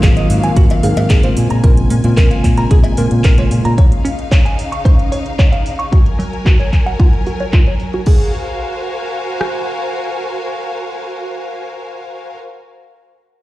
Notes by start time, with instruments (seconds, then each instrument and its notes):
Already playing: tine electric piano D#3 F#3 A#3 C4 F4, string section F#3 A#3 F5, impact
0.03 fingered electric bass G#1, clean electric guitar G#4, kick, clap, closed hi-hat
0.17 clean electric guitar D#5, closed hi-hat
0.30 fingered electric bass G#2, open hi-hat
0.43 tine electric piano D#3 F#3 A#3 C4 F4, clean electric guitar G#5, closed hi-hat
0.56 fingered electric bass G#1, clean electric guitar F#4, kick, closed hi-hat
0.70 closed hi-hat, cowbell
0.83 fingered electric bass G#2, tine electric piano D#3 F#3 A#3 C4 F5, clean electric guitar G#4, open hi-hat
0.97 fingered electric bass G#2, closed hi-hat, cowbell
1.10 fingered electric bass G#1, clean electric guitar G#4, kick, clap, closed hi-hat
1.23 tine electric piano C#3 G#3 A#3 C4 F4, clean electric guitar C5, closed hi-hat
1.37 fingered electric bass A#2, string section G#5, open hi-hat
1.50 fingered electric bass A#2, clean electric guitar A#5, closed hi-hat
1.63 fingered electric bass A#1, tine electric piano C#3 G#3 A#3 C4 F4, clean electric guitar A#4, kick, closed hi-hat
1.77 closed hi-hat
1.90 fingered electric bass A#2, clean electric guitar A#3, open hi-hat
2.04 fingered electric bass A#2, tine electric piano C#3 G#3 A#3 C4 F4, closed hi-hat
2.17 fingered electric bass A#1, clean electric guitar A#4, kick, clap, closed hi-hat
2.31 clean electric guitar F5, closed hi-hat
2.44 fingered electric bass A#2, kick, clap, open hi-hat
2.57 tine electric piano C#3 G#3 A#3 C4 F4, clean electric guitar A#5, closed hi-hat
2.71 fingered electric bass A#1, clean electric guitar G#4, kick, closed hi-hat
2.84 muted fingered electric bass stroke, closed hi-hat, cowbell
2.97 fingered electric bass A#2, tine electric piano C#3 G#3 A#3 C4 F4, clean electric guitar A#4, open hi-hat
3.11 fingered electric bass A#2, closed hi-hat
3.24 fingered electric bass A#1, clean electric guitar A#4, kick, clap, closed hi-hat
3.38 tine electric piano C#3 G#3 A#3 F4, clean electric guitar C#5, closed hi-hat
3.51 fingered electric bass A#2, open hi-hat
3.65 fingered electric bass A#2, clean electric guitar A#5, closed hi-hat
3.78 string section C#3 D#4 F5, clean electric guitar C#5, kick, closed hi-hat
3.92 closed hi-hat
4.05 clean electric guitar C#4, open hi-hat
4.19 closed hi-hat
4.31 clean electric guitar C#5, kick, clap, closed hi-hat
4.46 clean electric guitar G#5, closed hi-hat
4.59 open hi-hat
4.72 clean electric guitar C#6, closed hi-hat
4.85 clean electric guitar C5, kick, closed hi-hat
4.99 closed hi-hat
5.12 clean electric guitar C#5, open hi-hat
5.26 closed hi-hat
5.39 clean electric guitar C#5, kick, clap, closed hi-hat
5.52 clean electric guitar F5, closed hi-hat
5.66 open hi-hat
5.79 clean electric guitar C#6, closed hi-hat
5.92 string section F#3 A#4 G#5, clean electric guitar F#4, kick, closed hi-hat
6.06 closed hi-hat
6.19 clean electric guitar F#3, open hi-hat
6.33 closed hi-hat
6.46 clean electric guitar F#4, kick, clap, closed hi-hat
6.60 clean electric guitar C#5, closed hi-hat
6.73 kick, clap, open hi-hat
6.86 clean electric guitar F#5, closed hi-hat
7.00 clean electric guitar F4, kick, closed hi-hat
7.13 closed hi-hat
7.26 clean electric guitar F#4, open hi-hat
7.40 clean electric guitar C#5, closed hi-hat
7.53 clean electric guitar F4, kick, clap, closed hi-hat
7.67 clean electric guitar C#5, closed hi-hat
7.80 open hi-hat
7.93 clean electric guitar F#4, closed hi-hat
8.06 string section F#4 A#4 C5 F5 G#5, clean electric guitar G#4, kick, crash
9.41 cross-stick